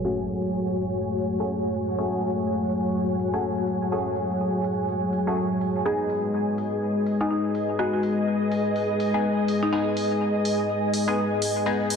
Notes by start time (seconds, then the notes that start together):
Already playing: F#3 A3 F#4 G#4 C#5 G#5
0.05 A3 C#4 F#4 G#4
0.29 open hi-hat
0.78 open hi-hat
1.02 open hi-hat
1.26 open hi-hat
1.40 A3 C#4 F#4 G#4
1.74 open hi-hat
1.98 A3 C#4 F#4 G#4
2.23 open hi-hat
2.71 open hi-hat
3.19 open hi-hat
3.33 A3 C#4 F#4 G#4
3.68 open hi-hat
3.92 A3 C#4 F#4 G#4
4.16 open hi-hat
4.65 open hi-hat
4.89 open hi-hat
5.13 open hi-hat
5.27 A3 C#4 F#4 G#4
5.61 open hi-hat
5.85 G#3 B3 D#4 G#4 B4 D#5
6.10 open hi-hat
6.48 D#5
6.58 open hi-hat
7.06 open hi-hat
7.21 G#3 B3 D#4 G#4
7.31 D#4
7.42 G#5
7.55 open hi-hat
7.79 G#3 B3 D#4 F#4 G#4
7.93 F#4
8.03 open hi-hat
8.52 open hi-hat
8.76 open hi-hat
9.00 open hi-hat
9.14 G#3 B3 D#4 G#4
9.48 open hi-hat
9.63 D#4
9.72 G#3 B3 D#4 G#4
9.97 open hi-hat
10.45 open hi-hat
10.94 open hi-hat
11.08 G#3 B3 D#4 G#4
11.42 open hi-hat
11.66 G#3 B3 D#4 G#4
11.90 open hi-hat